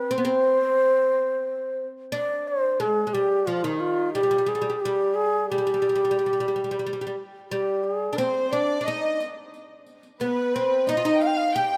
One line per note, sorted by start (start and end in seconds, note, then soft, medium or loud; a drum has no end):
0.00 0.14 B4 medium
0.11 0.17 C4 medium
0.11 1.87 C5 loud
0.18 0.25 B3 medium
0.25 1.82 C4 medium
2.12 2.82 D4 medium
2.12 2.49 D5 loud
2.48 2.82 C5 medium
2.80 3.06 G#3 medium
2.80 3.15 G#4 medium
3.07 3.14 G#3 medium
3.13 3.49 G3 medium
3.13 3.48 G4 medium
3.47 3.64 F3 medium
3.47 3.66 F4 medium
3.64 4.16 D#3 medium
3.64 3.82 D#4 medium
3.80 4.13 F4 medium
4.13 4.22 G3 medium
4.13 4.50 G4 medium
4.23 4.30 G3 medium
4.31 4.37 G3 medium
4.38 4.45 G3 soft
4.46 4.53 G3 medium
4.46 4.82 G#4 medium
4.55 4.60 G3 medium
4.62 4.68 G3 medium
4.70 4.75 G3 soft
4.81 5.16 G4 medium
4.85 5.50 G3 medium
5.14 5.49 G#4 medium
5.49 5.57 G3 medium
5.49 7.20 G4 medium
5.58 5.64 G3 medium
5.67 5.73 G3 medium
5.74 5.80 G3 medium
5.82 5.88 G3 soft
5.89 5.94 G3 soft
5.95 6.02 G3 medium
6.05 6.10 G3 soft
6.11 6.17 G3 medium
6.19 6.25 G3 soft
6.26 6.32 G3 soft
6.33 6.39 G3 soft
6.40 6.47 G3 medium
6.48 6.54 G3 soft
6.56 6.62 G3 soft
6.64 6.70 G3 soft
6.71 6.77 G3 medium
6.79 6.85 G3 soft
6.87 6.92 G3 medium
6.93 6.99 G3 soft
7.01 7.06 G3 medium
7.07 7.14 G3 soft
7.51 8.08 G3 medium
7.51 7.84 G4 medium
7.84 7.95 G4 medium
7.95 8.18 G#4 medium
8.13 8.18 D4 medium
8.17 8.52 C4 medium
8.17 8.49 C5 medium
8.17 8.50 C5 medium
8.17 riq medium
8.50 8.80 D4 medium
8.50 8.86 D5 medium
8.81 8.87 D4 medium
8.81 9.19 D#5 medium
8.85 9.18 D#4 medium
8.85 9.19 D#5 medium
8.85 riq soft
9.20 riq medium
9.54 riq soft
9.86 riq soft
10.03 riq soft
10.20 10.55 B3 medium
10.20 10.84 B4 medium
10.20 10.56 B4 medium
10.20 riq medium
10.55 10.88 C4 medium
10.55 10.91 C5 medium
10.87 10.95 D#4 medium
10.87 11.14 D#5 medium
10.87 11.24 D#5 medium
10.87 riq medium
10.97 11.03 F4 medium
11.05 11.55 D#4 medium
11.14 11.21 G5 medium
11.20 11.54 F5 medium
11.20 11.28 F5 medium
11.20 riq soft
11.27 11.39 G5 medium
11.37 11.57 F5 medium
11.53 11.77 G4 medium
11.53 11.77 G5 medium
11.53 riq soft